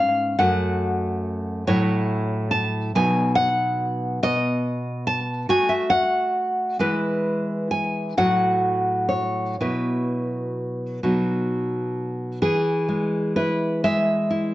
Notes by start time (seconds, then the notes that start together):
Already playing: G#2 B3 C#4 F5
0.39 F#2 A3 F#4 F#5
1.67 A2 F#3 E4 C#5
2.51 A5
2.95 B2 F#3 D#4 G#5
3.35 F#5
4.23 B2 D#5
5.07 A5
5.49 A3 F#4 G#5
5.69 E5
5.90 F#5
6.79 E3 G#3 E4 B4
7.71 G#5
8.17 A2 F#3 F#4 F#5
9.09 C#5
9.61 B2 F#3 E4 B4
11.03 B2 F#3 D#4
12.42 E3 G#4
12.88 G#3
13.36 E4 B4
13.84 G#3 E5
14.30 E4